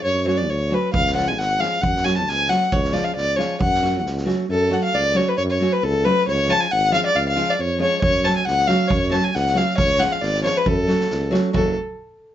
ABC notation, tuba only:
X:1
M:2/4
L:1/8
Q:1/4=136
K:F#m
V:1 name="Tuba" clef=bass
F,,2 D,,2 | C,,2 G,,,2 | F,,2 C,,2 | C,,2 C,,2 |
F,,2 C,,2 | F,,2 C,,2 | F,,2 C,,2 | C,,2 G,,,2 |
C,,2 ^E,,2 | F,,2 C,,2 | F,,2 C,,2 | C,,2 G,,,2 |
F,,2 C,,2 | F,,, z3 |]